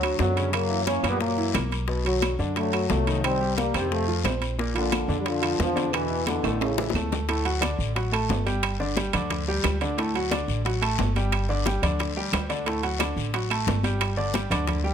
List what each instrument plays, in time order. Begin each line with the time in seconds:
Already playing: upright bass D2, trombone section D3 F#3
0.02 upright piano F#3 F#4, high conga, high timbale, claves
0.19 upright bass F#2, trombone section D3 F#3, high bongo, low bongo, high conga, low timbale, short guiro
0.37 upright piano C#3 C#4, high timbale, short guiro
0.53 trombone section F#3 A#3, high bongo, high conga, high timbale, long guiro, claves
0.69 upright piano E3 E4, high conga
0.86 trombone section A#3 C#4, high bongo, high conga, high timbale, low timbale, short guiro
1.03 upright bass F#2, upright piano A#2 A#3, high bongo, high timbale, short guiro, claves
1.09 trombone section G3 B3
1.20 trombone section F#3 A#3, high bongo, high conga, long guiro
1.37 upright piano E3 E4, high bongo, high conga
1.53 upright bass B1, upright piano A#3 A#4, high bongo, low bongo, high conga, high timbale, low timbale, short guiro, claves
1.72 high bongo, high conga, high timbale, short guiro
1.88 upright piano B2 B3, high bongo, high conga, long guiro
2.05 trombone section D3 F#3, upright piano F#3 F#4, high conga, high timbale
2.22 high bongo, high conga, high timbale, low timbale, short guiro, claves
2.39 upright bass F#2, upright piano D3 D4, high conga, short guiro
2.56 trombone section F#3 A3, high bongo, high conga, high timbale, long guiro
2.72 upright piano F#3 F#4, high conga, high timbale, claves
2.90 upright bass C2, trombone section F#3 A3, high bongo, low bongo, high conga, low timbale, short guiro
3.07 upright piano D#3 D#4, high timbale, short guiro
3.24 trombone section G3 C4, high bongo, high conga, high timbale, long guiro, claves
3.41 upright piano G3 G4, high conga
3.58 trombone section G3 A#3, high bongo, high conga, high timbale, low timbale, short guiro
3.74 upright bass F2, upright piano C3 C4, high bongo, high timbale, short guiro, claves
3.80 trombone section D#3 G3
3.91 trombone section F3 A3, high bongo, high conga, long guiro
4.08 upright piano F3 F4, high bongo, high conga
4.24 upright bass A#1, upright piano C4 C5, high bongo, low bongo, high conga, high timbale, low timbale, short guiro, claves
4.42 high bongo, high conga, high timbale, short guiro
4.59 upright piano A#2 A#3, high bongo, high conga, long guiro
4.74 trombone section A#2, upright piano F3 F4, high conga, high timbale
4.78 trombone section D3
4.92 high bongo, high conga, high timbale, low timbale, short guiro, claves
5.08 upright bass F2, upright piano D3 D4, high conga, short guiro
5.20 trombone section G3
5.26 trombone section D3 F3, high bongo, high conga, high timbale, long guiro
5.42 upright piano F3 F4, high conga, high timbale, claves
5.59 upright bass E2, trombone section D3 F3, high bongo, low bongo, high conga, low timbale, short guiro
5.76 upright piano D3 D4, high conga, high timbale, short guiro
5.93 trombone section B2 E3, high bongo, high conga, high timbale, long guiro, claves
6.10 upright piano E3 E4, high conga
6.27 trombone section B2 D3, high bongo, high conga, high timbale, low timbale, short guiro
6.43 upright bass A1, upright piano A2 A3, high bongo, high timbale, short guiro, claves
6.61 trombone section A2 C#3, high bongo, high conga, high timbale, long guiro
6.78 upright piano E3 E4, high bongo, high conga, low timbale
6.90 upright bass D2, high bongo
6.95 upright piano A3 A4, high conga, low timbale, short guiro, claves
7.12 low bongo, high conga, low timbale, short guiro
7.28 upright piano A2 A3 A4, high bongo, high conga, high timbale, long guiro
7.45 upright piano F#3 F#4 F#5, high conga, high timbale
7.61 upright piano D3 D4 D5, high bongo, high conga, high timbale, low timbale, short guiro, claves
7.79 upright bass A1, short guiro
7.95 upright piano F#3 F#4 F#5, high bongo, high conga, high timbale, long guiro
8.12 upright piano A3 A4 A5, high conga, high timbale, claves
8.30 upright bass G1, high bongo, low bongo, high conga, low timbale, short guiro
8.46 upright piano G3 G4 G5, high conga, high timbale, short guiro
8.63 high bongo, high timbale, long guiro, claves
8.80 upright piano D3 D4 D5, high bongo, high conga
8.96 upright piano G3 G4 G5, high bongo, high conga, high timbale, low timbale, short guiro
9.13 upright bass D2, upright piano D3 D4 D5, high bongo, high conga, low conga, high timbale, short guiro, claves
9.30 high bongo, high conga, low conga, high timbale, long guiro
9.47 upright piano G3 G4 G5, high conga
9.64 upright bass D2, high bongo, low bongo, high conga, high timbale, low timbale, short guiro, claves
9.81 upright piano D3 D4 D5, high bongo, high timbale, short guiro
9.97 upright piano A2 A3 A4, high bongo, high conga, high timbale, long guiro
10.15 upright piano F#3 F#4 F#5, high conga, high timbale
10.31 upright piano D3 D4 D5, high bongo, high conga, high timbale, low timbale, short guiro, claves
10.48 upright bass A1, short guiro
10.65 upright piano F#3 F#4 F#5, high bongo, high conga, high timbale, long guiro
10.82 upright piano A3 A4 A5, high conga, high timbale, claves
10.98 upright bass G1, high bongo, low bongo, high conga, low timbale, short guiro
11.16 upright piano G3 G4 G5, high conga, high timbale, short guiro
11.32 high bongo, high conga, high timbale, long guiro, claves
11.49 upright piano D3 D4 D5, high bongo, high conga
11.66 upright piano G3 G4 G5, high bongo, high conga, high timbale, low timbale, short guiro
11.82 upright bass D2, upright piano D3 D4 D5, high bongo, high conga, low conga, high timbale, short guiro, claves
11.99 high bongo, high conga, high timbale, long guiro
12.16 upright piano G3 G4 G5, high conga
12.32 upright bass D2, high bongo, low bongo, high conga, high timbale, low timbale, short guiro, claves
12.49 upright piano D3 D4 D5, high bongo, high timbale, short guiro
12.66 upright piano A2 A3 A4, high bongo, high conga, high timbale, long guiro
12.83 upright piano F#3 F#4 F#5, high conga, high timbale
12.99 upright piano D3 D4 D5, high bongo, high conga, high timbale, low timbale, short guiro, claves
13.16 upright bass A1, short guiro
13.34 upright piano F#3 F#4 F#5, high bongo, high conga, high timbale, long guiro
13.50 upright piano A3 A4 A5, high conga, high timbale, claves
13.67 upright bass G1, high bongo, low bongo, high conga, low timbale, short guiro
13.83 upright piano G3 G4 G5, high conga, high timbale, short guiro
14.00 high bongo, high conga, high timbale, long guiro, claves
14.17 upright piano D3 D4 D5, high bongo, high conga
14.34 upright piano G3 G4 G5, high bongo, high conga, high timbale, low timbale, short guiro
14.50 upright bass D2, upright piano D3 D4 D5, high bongo, high conga, low conga, high timbale, short guiro, claves
14.67 high bongo, high conga, low conga, high timbale, long guiro
14.84 upright piano G3 G4 G5, high conga